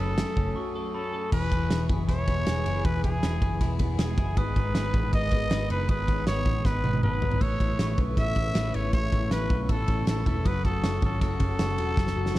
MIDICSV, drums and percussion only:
0, 0, Header, 1, 2, 480
1, 0, Start_track
1, 0, Key_signature, 4, "major"
1, 0, Tempo, 380469
1, 1669, Time_signature, 4, 2, 24, 8
1, 15630, End_track
2, 0, Start_track
2, 0, Title_t, "Drums"
2, 223, Note_on_c, 9, 38, 115
2, 225, Note_on_c, 9, 51, 81
2, 349, Note_off_c, 9, 38, 0
2, 351, Note_off_c, 9, 51, 0
2, 461, Note_on_c, 9, 51, 55
2, 464, Note_on_c, 9, 36, 97
2, 587, Note_off_c, 9, 51, 0
2, 590, Note_off_c, 9, 36, 0
2, 1669, Note_on_c, 9, 49, 95
2, 1670, Note_on_c, 9, 36, 106
2, 1795, Note_off_c, 9, 49, 0
2, 1796, Note_off_c, 9, 36, 0
2, 1913, Note_on_c, 9, 36, 97
2, 1918, Note_on_c, 9, 51, 62
2, 2039, Note_off_c, 9, 36, 0
2, 2044, Note_off_c, 9, 51, 0
2, 2151, Note_on_c, 9, 38, 125
2, 2153, Note_on_c, 9, 51, 80
2, 2278, Note_off_c, 9, 38, 0
2, 2279, Note_off_c, 9, 51, 0
2, 2389, Note_on_c, 9, 51, 54
2, 2390, Note_on_c, 9, 36, 101
2, 2515, Note_off_c, 9, 51, 0
2, 2517, Note_off_c, 9, 36, 0
2, 2631, Note_on_c, 9, 36, 96
2, 2635, Note_on_c, 9, 51, 82
2, 2641, Note_on_c, 9, 38, 32
2, 2758, Note_off_c, 9, 36, 0
2, 2761, Note_off_c, 9, 51, 0
2, 2767, Note_off_c, 9, 38, 0
2, 2870, Note_on_c, 9, 51, 70
2, 2872, Note_on_c, 9, 36, 85
2, 2996, Note_off_c, 9, 51, 0
2, 2999, Note_off_c, 9, 36, 0
2, 3109, Note_on_c, 9, 51, 78
2, 3114, Note_on_c, 9, 38, 116
2, 3236, Note_off_c, 9, 51, 0
2, 3240, Note_off_c, 9, 38, 0
2, 3354, Note_on_c, 9, 51, 72
2, 3480, Note_off_c, 9, 51, 0
2, 3594, Note_on_c, 9, 36, 114
2, 3594, Note_on_c, 9, 51, 78
2, 3720, Note_off_c, 9, 36, 0
2, 3720, Note_off_c, 9, 51, 0
2, 3836, Note_on_c, 9, 36, 92
2, 3839, Note_on_c, 9, 51, 64
2, 3962, Note_off_c, 9, 36, 0
2, 3965, Note_off_c, 9, 51, 0
2, 4076, Note_on_c, 9, 38, 115
2, 4078, Note_on_c, 9, 51, 76
2, 4202, Note_off_c, 9, 38, 0
2, 4204, Note_off_c, 9, 51, 0
2, 4312, Note_on_c, 9, 36, 98
2, 4312, Note_on_c, 9, 51, 59
2, 4438, Note_off_c, 9, 36, 0
2, 4439, Note_off_c, 9, 51, 0
2, 4552, Note_on_c, 9, 36, 104
2, 4555, Note_on_c, 9, 51, 82
2, 4561, Note_on_c, 9, 38, 35
2, 4678, Note_off_c, 9, 36, 0
2, 4681, Note_off_c, 9, 51, 0
2, 4687, Note_off_c, 9, 38, 0
2, 4784, Note_on_c, 9, 51, 74
2, 4791, Note_on_c, 9, 36, 84
2, 4911, Note_off_c, 9, 51, 0
2, 4918, Note_off_c, 9, 36, 0
2, 5029, Note_on_c, 9, 51, 80
2, 5033, Note_on_c, 9, 38, 119
2, 5155, Note_off_c, 9, 51, 0
2, 5160, Note_off_c, 9, 38, 0
2, 5270, Note_on_c, 9, 36, 106
2, 5273, Note_on_c, 9, 51, 61
2, 5396, Note_off_c, 9, 36, 0
2, 5399, Note_off_c, 9, 51, 0
2, 5512, Note_on_c, 9, 51, 80
2, 5513, Note_on_c, 9, 36, 107
2, 5638, Note_off_c, 9, 51, 0
2, 5639, Note_off_c, 9, 36, 0
2, 5755, Note_on_c, 9, 36, 98
2, 5758, Note_on_c, 9, 51, 60
2, 5882, Note_off_c, 9, 36, 0
2, 5884, Note_off_c, 9, 51, 0
2, 5991, Note_on_c, 9, 38, 123
2, 5993, Note_on_c, 9, 51, 78
2, 6117, Note_off_c, 9, 38, 0
2, 6119, Note_off_c, 9, 51, 0
2, 6228, Note_on_c, 9, 51, 60
2, 6231, Note_on_c, 9, 36, 98
2, 6354, Note_off_c, 9, 51, 0
2, 6357, Note_off_c, 9, 36, 0
2, 6472, Note_on_c, 9, 36, 98
2, 6474, Note_on_c, 9, 51, 75
2, 6598, Note_off_c, 9, 36, 0
2, 6600, Note_off_c, 9, 51, 0
2, 6703, Note_on_c, 9, 51, 67
2, 6710, Note_on_c, 9, 36, 83
2, 6829, Note_off_c, 9, 51, 0
2, 6836, Note_off_c, 9, 36, 0
2, 6947, Note_on_c, 9, 51, 77
2, 6951, Note_on_c, 9, 38, 125
2, 7073, Note_off_c, 9, 51, 0
2, 7077, Note_off_c, 9, 38, 0
2, 7191, Note_on_c, 9, 51, 66
2, 7317, Note_off_c, 9, 51, 0
2, 7426, Note_on_c, 9, 51, 75
2, 7431, Note_on_c, 9, 36, 106
2, 7552, Note_off_c, 9, 51, 0
2, 7557, Note_off_c, 9, 36, 0
2, 7673, Note_on_c, 9, 36, 95
2, 7675, Note_on_c, 9, 51, 64
2, 7799, Note_off_c, 9, 36, 0
2, 7801, Note_off_c, 9, 51, 0
2, 7908, Note_on_c, 9, 38, 123
2, 7909, Note_on_c, 9, 51, 72
2, 8034, Note_off_c, 9, 38, 0
2, 8036, Note_off_c, 9, 51, 0
2, 8144, Note_on_c, 9, 51, 55
2, 8148, Note_on_c, 9, 36, 87
2, 8270, Note_off_c, 9, 51, 0
2, 8274, Note_off_c, 9, 36, 0
2, 8388, Note_on_c, 9, 36, 97
2, 8391, Note_on_c, 9, 38, 62
2, 8514, Note_off_c, 9, 36, 0
2, 8517, Note_off_c, 9, 38, 0
2, 8629, Note_on_c, 9, 48, 81
2, 8750, Note_off_c, 9, 48, 0
2, 8750, Note_on_c, 9, 48, 75
2, 8872, Note_on_c, 9, 47, 95
2, 8876, Note_off_c, 9, 48, 0
2, 8998, Note_off_c, 9, 47, 0
2, 9109, Note_on_c, 9, 43, 115
2, 9228, Note_off_c, 9, 43, 0
2, 9228, Note_on_c, 9, 43, 104
2, 9350, Note_on_c, 9, 36, 104
2, 9351, Note_on_c, 9, 49, 79
2, 9355, Note_off_c, 9, 43, 0
2, 9476, Note_off_c, 9, 36, 0
2, 9478, Note_off_c, 9, 49, 0
2, 9592, Note_on_c, 9, 36, 91
2, 9596, Note_on_c, 9, 51, 67
2, 9718, Note_off_c, 9, 36, 0
2, 9722, Note_off_c, 9, 51, 0
2, 9830, Note_on_c, 9, 38, 119
2, 9832, Note_on_c, 9, 51, 77
2, 9956, Note_off_c, 9, 38, 0
2, 9958, Note_off_c, 9, 51, 0
2, 10066, Note_on_c, 9, 51, 56
2, 10068, Note_on_c, 9, 36, 90
2, 10192, Note_off_c, 9, 51, 0
2, 10194, Note_off_c, 9, 36, 0
2, 10309, Note_on_c, 9, 36, 96
2, 10312, Note_on_c, 9, 51, 80
2, 10318, Note_on_c, 9, 38, 34
2, 10435, Note_off_c, 9, 36, 0
2, 10438, Note_off_c, 9, 51, 0
2, 10444, Note_off_c, 9, 38, 0
2, 10546, Note_on_c, 9, 51, 72
2, 10548, Note_on_c, 9, 36, 84
2, 10672, Note_off_c, 9, 51, 0
2, 10674, Note_off_c, 9, 36, 0
2, 10785, Note_on_c, 9, 51, 82
2, 10790, Note_on_c, 9, 38, 123
2, 10911, Note_off_c, 9, 51, 0
2, 10916, Note_off_c, 9, 38, 0
2, 11027, Note_on_c, 9, 51, 66
2, 11153, Note_off_c, 9, 51, 0
2, 11266, Note_on_c, 9, 51, 82
2, 11269, Note_on_c, 9, 36, 106
2, 11393, Note_off_c, 9, 51, 0
2, 11395, Note_off_c, 9, 36, 0
2, 11511, Note_on_c, 9, 36, 97
2, 11514, Note_on_c, 9, 51, 63
2, 11638, Note_off_c, 9, 36, 0
2, 11640, Note_off_c, 9, 51, 0
2, 11748, Note_on_c, 9, 38, 117
2, 11750, Note_on_c, 9, 51, 72
2, 11874, Note_off_c, 9, 38, 0
2, 11876, Note_off_c, 9, 51, 0
2, 11985, Note_on_c, 9, 51, 56
2, 11987, Note_on_c, 9, 36, 95
2, 12111, Note_off_c, 9, 51, 0
2, 12114, Note_off_c, 9, 36, 0
2, 12226, Note_on_c, 9, 51, 79
2, 12227, Note_on_c, 9, 36, 95
2, 12352, Note_off_c, 9, 51, 0
2, 12353, Note_off_c, 9, 36, 0
2, 12461, Note_on_c, 9, 51, 68
2, 12467, Note_on_c, 9, 36, 87
2, 12587, Note_off_c, 9, 51, 0
2, 12594, Note_off_c, 9, 36, 0
2, 12704, Note_on_c, 9, 51, 76
2, 12708, Note_on_c, 9, 38, 111
2, 12830, Note_off_c, 9, 51, 0
2, 12834, Note_off_c, 9, 38, 0
2, 12948, Note_on_c, 9, 36, 92
2, 12951, Note_on_c, 9, 51, 67
2, 13074, Note_off_c, 9, 36, 0
2, 13077, Note_off_c, 9, 51, 0
2, 13191, Note_on_c, 9, 36, 113
2, 13191, Note_on_c, 9, 51, 75
2, 13317, Note_off_c, 9, 36, 0
2, 13317, Note_off_c, 9, 51, 0
2, 13433, Note_on_c, 9, 36, 95
2, 13436, Note_on_c, 9, 51, 58
2, 13559, Note_off_c, 9, 36, 0
2, 13562, Note_off_c, 9, 51, 0
2, 13671, Note_on_c, 9, 38, 116
2, 13673, Note_on_c, 9, 51, 78
2, 13797, Note_off_c, 9, 38, 0
2, 13799, Note_off_c, 9, 51, 0
2, 13904, Note_on_c, 9, 51, 56
2, 13908, Note_on_c, 9, 36, 102
2, 14030, Note_off_c, 9, 51, 0
2, 14034, Note_off_c, 9, 36, 0
2, 14148, Note_on_c, 9, 36, 96
2, 14149, Note_on_c, 9, 51, 84
2, 14154, Note_on_c, 9, 38, 33
2, 14274, Note_off_c, 9, 36, 0
2, 14275, Note_off_c, 9, 51, 0
2, 14281, Note_off_c, 9, 38, 0
2, 14379, Note_on_c, 9, 51, 73
2, 14386, Note_on_c, 9, 36, 80
2, 14505, Note_off_c, 9, 51, 0
2, 14512, Note_off_c, 9, 36, 0
2, 14621, Note_on_c, 9, 51, 76
2, 14625, Note_on_c, 9, 38, 121
2, 14747, Note_off_c, 9, 51, 0
2, 14752, Note_off_c, 9, 38, 0
2, 14864, Note_on_c, 9, 51, 67
2, 14990, Note_off_c, 9, 51, 0
2, 15105, Note_on_c, 9, 36, 119
2, 15108, Note_on_c, 9, 38, 62
2, 15228, Note_off_c, 9, 38, 0
2, 15228, Note_on_c, 9, 38, 60
2, 15231, Note_off_c, 9, 36, 0
2, 15354, Note_off_c, 9, 38, 0
2, 15467, Note_on_c, 9, 38, 57
2, 15585, Note_off_c, 9, 38, 0
2, 15585, Note_on_c, 9, 38, 78
2, 15630, Note_off_c, 9, 38, 0
2, 15630, End_track
0, 0, End_of_file